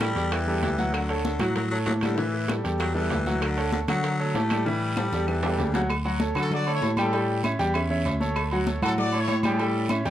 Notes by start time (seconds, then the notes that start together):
Already playing: A2
0.00 G3 G4 A4, high bongo, high conga, high timbale, low timbale, short guiro, claves
0.15 E2 G3 G4 A4, high bongo, high conga, high timbale, short guiro
0.32 E3, high bongo, high conga, high timbale, long guiro, claves
0.47 E2 G3 G4 A4, high conga
0.62 D2 E3, high bongo, low bongo, high conga, high timbale, low timbale, short guiro
0.78 F#3 F#4 F#5, high bongo, high conga, short guiro
0.94 D3, high bongo, high conga, high timbale, long guiro, claves
1.09 A3 A4 C#5, high bongo, high conga, high timbale
1.25 D3, high bongo, high conga, low timbale, short guiro
1.39 A2 F#3 F#4 F#5, high bongo, high conga, low conga, high timbale, short guiro, claves
1.56 F#3, high bongo, high conga, low conga, high timbale, long guiro
1.71 F#3 A3 A4 C#5
1.86 A2 F#3, high bongo, low bongo, high conga, high timbale, low timbale, short guiro
2.01 D3 G3 G4 A4, high bongo, high conga, high timbale, short guiro, claves
2.16 E3 E4 E5, high bongo, high conga, long guiro
2.34 high bongo, high conga
2.48 G3 G4 A4, high bongo, high conga, high timbale, low timbale, short guiro, claves
2.64 E2 G3 G4 A4, high bongo, high timbale, short guiro
2.79 F#3, high bongo, high conga, high timbale, long guiro, claves
2.94 E2 E3 G3 G4 A4, high conga
3.10 D2, high bongo, low bongo, high conga, high timbale, low timbale, short guiro
3.26 F#3 F#4 F#5, high bongo, high conga, short guiro
3.41 D3, high bongo, high conga, high timbale, long guiro, claves
3.57 A3 A4 C#5, high bongo, high conga, high timbale
3.72 D3, high bongo, high conga, low timbale, short guiro
3.88 D3 F#3 F#4 F#5, high bongo, high conga, low conga, high timbale, short guiro, claves
4.04 high bongo, high conga, high timbale, long guiro
4.19 A3 A4 C#5, high conga
4.34 A2 A3, high bongo, low bongo, high conga, high timbale, low timbale, short guiro
4.50 G3 G4 A4, high bongo, high conga, high timbale, short guiro, claves
4.66 E3 G3 E4 E5, high bongo, long guiro
4.81 high conga
4.96 G3 G4 A4, low bongo, high conga, high timbale, short guiro, claves
5.12 E2 G3 G4 A4, low bongo, short guiro
5.27 E3, low bongo, high conga, long guiro, claves
5.43 E2 G3 G4 A4, low bongo, high conga, low timbale
5.58 D2 C#3, low bongo, high conga, low timbale, short guiro
5.74 C#3 F#3 F#4 F#5, low bongo, high conga, low timbale, short guiro
5.90 cowbell, high conga, low agogo, long guiro, claves
6.05 F#3 F#4 F#5, high conga, low agogo
6.20 A3 A4 C#5, cowbell, high conga, short guiro
6.35 D3 F#3 C#4 F#4 A4 F#5, high conga, low conga, low agogo, short guiro, claves
6.51 F#4 D5, cowbell, high conga, low conga, long guiro
6.66 A3 A4 C#5, high conga, low agogo
6.73 E4 C#5
6.82 A2, cowbell, high conga, low timbale, low agogo, short guiro
6.97 G3 C#4 G4 A4 G5, cowbell, high conga, low agogo, short guiro, claves
7.13 G3 G4 G5, cowbell, high conga, low agogo, long guiro
7.28 high conga
7.44 C#4 C#5 E5, cowbell, high conga, low agogo, short guiro, claves
7.59 E2 G3 G4 G5, cowbell, high conga, short guiro
7.74 C#4 C#5 E5, cowbell, high conga, low agogo, long guiro, claves
7.90 E2 C#4 C#5 E5, high conga
8.05 D2, cowbell, high conga, low timbale, low agogo, short guiro
8.20 A3 A4 C#5, high conga, short guiro
8.36 cowbell, high conga, low agogo, long guiro, claves
8.51 F#3 F#4 F#5, high conga, low agogo
8.67 A3 A4 C#5, cowbell, high conga, short guiro
8.82 A2 F#3 C#4 F#4 A4 F#5, high conga, low conga, low agogo, short guiro, claves
8.98 F#4 D5, cowbell, high conga, low conga, long guiro
9.13 A3 A4 C#5, high conga, low agogo
9.19 E4 C#5
9.28 A2, cowbell, high conga, low timbale, low agogo, short guiro
9.43 G3 C#4 G4 A4 G5, cowbell, high conga, low agogo, short guiro, claves
9.59 G3 G4 G5, cowbell, high conga, low agogo, long guiro
9.74 high conga
9.89 C#4 C#5 E5, cowbell, high conga, low agogo, short guiro, claves
10.05 E2 G3 G4 G5, cowbell, high conga, short guiro